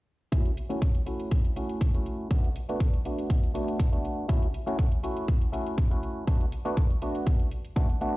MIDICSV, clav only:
0, 0, Header, 1, 2, 480
1, 0, Start_track
1, 0, Tempo, 495868
1, 316, Time_signature, 4, 2, 24, 8
1, 7907, End_track
2, 0, Start_track
2, 0, Title_t, "Clav"
2, 0, Program_c, 0, 7
2, 309, Note_on_c, 0, 57, 82
2, 312, Note_on_c, 0, 61, 78
2, 313, Note_on_c, 0, 64, 77
2, 316, Note_on_c, 0, 66, 94
2, 487, Note_off_c, 0, 57, 0
2, 489, Note_off_c, 0, 61, 0
2, 489, Note_off_c, 0, 64, 0
2, 491, Note_off_c, 0, 66, 0
2, 672, Note_on_c, 0, 57, 81
2, 673, Note_on_c, 0, 61, 76
2, 678, Note_on_c, 0, 64, 79
2, 678, Note_on_c, 0, 66, 92
2, 778, Note_off_c, 0, 57, 0
2, 779, Note_off_c, 0, 61, 0
2, 782, Note_off_c, 0, 64, 0
2, 782, Note_off_c, 0, 66, 0
2, 1028, Note_on_c, 0, 57, 70
2, 1029, Note_on_c, 0, 61, 60
2, 1033, Note_on_c, 0, 64, 63
2, 1035, Note_on_c, 0, 66, 77
2, 1484, Note_off_c, 0, 57, 0
2, 1485, Note_off_c, 0, 61, 0
2, 1487, Note_off_c, 0, 64, 0
2, 1488, Note_off_c, 0, 66, 0
2, 1511, Note_on_c, 0, 57, 69
2, 1512, Note_on_c, 0, 61, 68
2, 1515, Note_on_c, 0, 64, 62
2, 1519, Note_on_c, 0, 66, 82
2, 1849, Note_off_c, 0, 57, 0
2, 1850, Note_off_c, 0, 61, 0
2, 1851, Note_off_c, 0, 64, 0
2, 1853, Note_off_c, 0, 66, 0
2, 1879, Note_on_c, 0, 57, 69
2, 1881, Note_on_c, 0, 61, 62
2, 1884, Note_on_c, 0, 64, 62
2, 1887, Note_on_c, 0, 66, 74
2, 2207, Note_off_c, 0, 57, 0
2, 2208, Note_off_c, 0, 61, 0
2, 2209, Note_off_c, 0, 64, 0
2, 2211, Note_off_c, 0, 66, 0
2, 2232, Note_on_c, 0, 57, 84
2, 2233, Note_on_c, 0, 59, 74
2, 2237, Note_on_c, 0, 62, 79
2, 2238, Note_on_c, 0, 66, 96
2, 2409, Note_off_c, 0, 57, 0
2, 2410, Note_off_c, 0, 59, 0
2, 2412, Note_off_c, 0, 62, 0
2, 2412, Note_off_c, 0, 66, 0
2, 2601, Note_on_c, 0, 57, 83
2, 2605, Note_on_c, 0, 59, 79
2, 2607, Note_on_c, 0, 62, 75
2, 2609, Note_on_c, 0, 66, 95
2, 2703, Note_off_c, 0, 57, 0
2, 2705, Note_off_c, 0, 59, 0
2, 2706, Note_off_c, 0, 62, 0
2, 2707, Note_off_c, 0, 66, 0
2, 2952, Note_on_c, 0, 57, 68
2, 2956, Note_on_c, 0, 59, 62
2, 2958, Note_on_c, 0, 62, 63
2, 2961, Note_on_c, 0, 66, 75
2, 3406, Note_off_c, 0, 57, 0
2, 3408, Note_off_c, 0, 59, 0
2, 3409, Note_off_c, 0, 62, 0
2, 3411, Note_off_c, 0, 66, 0
2, 3426, Note_on_c, 0, 57, 71
2, 3430, Note_on_c, 0, 59, 67
2, 3432, Note_on_c, 0, 62, 65
2, 3433, Note_on_c, 0, 66, 84
2, 3767, Note_off_c, 0, 57, 0
2, 3769, Note_off_c, 0, 59, 0
2, 3769, Note_off_c, 0, 62, 0
2, 3770, Note_off_c, 0, 66, 0
2, 3793, Note_on_c, 0, 57, 67
2, 3796, Note_on_c, 0, 59, 64
2, 3799, Note_on_c, 0, 62, 64
2, 3799, Note_on_c, 0, 66, 73
2, 4124, Note_off_c, 0, 57, 0
2, 4125, Note_off_c, 0, 59, 0
2, 4127, Note_off_c, 0, 62, 0
2, 4127, Note_off_c, 0, 66, 0
2, 4147, Note_on_c, 0, 57, 89
2, 4150, Note_on_c, 0, 61, 78
2, 4153, Note_on_c, 0, 64, 78
2, 4155, Note_on_c, 0, 66, 98
2, 4326, Note_off_c, 0, 57, 0
2, 4328, Note_off_c, 0, 61, 0
2, 4329, Note_off_c, 0, 64, 0
2, 4330, Note_off_c, 0, 66, 0
2, 4515, Note_on_c, 0, 57, 84
2, 4516, Note_on_c, 0, 61, 77
2, 4519, Note_on_c, 0, 64, 78
2, 4523, Note_on_c, 0, 66, 98
2, 4620, Note_off_c, 0, 57, 0
2, 4621, Note_off_c, 0, 61, 0
2, 4622, Note_off_c, 0, 64, 0
2, 4624, Note_off_c, 0, 66, 0
2, 4871, Note_on_c, 0, 57, 73
2, 4875, Note_on_c, 0, 61, 63
2, 4876, Note_on_c, 0, 64, 64
2, 4878, Note_on_c, 0, 66, 81
2, 5326, Note_off_c, 0, 57, 0
2, 5328, Note_off_c, 0, 61, 0
2, 5329, Note_off_c, 0, 64, 0
2, 5329, Note_off_c, 0, 66, 0
2, 5345, Note_on_c, 0, 57, 71
2, 5349, Note_on_c, 0, 61, 66
2, 5351, Note_on_c, 0, 64, 66
2, 5354, Note_on_c, 0, 66, 78
2, 5686, Note_off_c, 0, 57, 0
2, 5688, Note_off_c, 0, 61, 0
2, 5689, Note_off_c, 0, 64, 0
2, 5691, Note_off_c, 0, 66, 0
2, 5717, Note_on_c, 0, 57, 70
2, 5717, Note_on_c, 0, 61, 65
2, 5720, Note_on_c, 0, 64, 65
2, 5724, Note_on_c, 0, 66, 76
2, 6046, Note_off_c, 0, 57, 0
2, 6046, Note_off_c, 0, 61, 0
2, 6047, Note_off_c, 0, 64, 0
2, 6049, Note_off_c, 0, 66, 0
2, 6074, Note_on_c, 0, 57, 83
2, 6074, Note_on_c, 0, 59, 80
2, 6077, Note_on_c, 0, 62, 77
2, 6079, Note_on_c, 0, 66, 94
2, 6250, Note_off_c, 0, 57, 0
2, 6250, Note_off_c, 0, 59, 0
2, 6251, Note_off_c, 0, 62, 0
2, 6253, Note_off_c, 0, 66, 0
2, 6437, Note_on_c, 0, 57, 84
2, 6439, Note_on_c, 0, 59, 80
2, 6440, Note_on_c, 0, 62, 77
2, 6444, Note_on_c, 0, 66, 95
2, 6541, Note_off_c, 0, 57, 0
2, 6542, Note_off_c, 0, 59, 0
2, 6542, Note_off_c, 0, 62, 0
2, 6545, Note_off_c, 0, 66, 0
2, 6794, Note_on_c, 0, 57, 68
2, 6796, Note_on_c, 0, 59, 64
2, 6799, Note_on_c, 0, 62, 65
2, 6802, Note_on_c, 0, 66, 79
2, 7247, Note_off_c, 0, 57, 0
2, 7248, Note_off_c, 0, 59, 0
2, 7250, Note_off_c, 0, 62, 0
2, 7251, Note_off_c, 0, 66, 0
2, 7511, Note_on_c, 0, 57, 79
2, 7512, Note_on_c, 0, 59, 70
2, 7515, Note_on_c, 0, 62, 73
2, 7516, Note_on_c, 0, 66, 90
2, 7626, Note_off_c, 0, 57, 0
2, 7626, Note_off_c, 0, 59, 0
2, 7628, Note_off_c, 0, 62, 0
2, 7629, Note_off_c, 0, 66, 0
2, 7753, Note_on_c, 0, 57, 82
2, 7754, Note_on_c, 0, 59, 73
2, 7758, Note_on_c, 0, 66, 90
2, 7759, Note_on_c, 0, 62, 70
2, 7907, Note_off_c, 0, 57, 0
2, 7907, Note_off_c, 0, 59, 0
2, 7907, Note_off_c, 0, 62, 0
2, 7907, Note_off_c, 0, 66, 0
2, 7907, End_track
0, 0, End_of_file